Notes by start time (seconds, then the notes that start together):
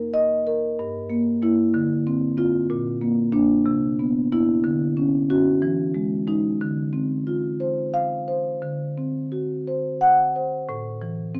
Already playing: F2 A#4
0.14 D#5
0.47 A#4
0.79 G2
1.10 A#3
1.42 A#3 E4
1.74 D3
2.07 C4
2.37 C4 F4
2.70 A#2
3.01 A#3
3.32 A#3 D4
3.66 C3
3.99 B3
4.32 B3 E4
4.64 D3
4.97 C#4
5.30 C#4 F#4
5.62 E3
5.94 G#3
6.27 G#3 D#4
6.61 D3
6.93 C4
7.27 F4
7.60 C5
7.94 F5
8.28 C5
8.62 D3
8.97 C4
9.32 F#4
9.67 C5
10.01 F#5
10.36 C5
10.69 A2
11.02 E3
11.35 C4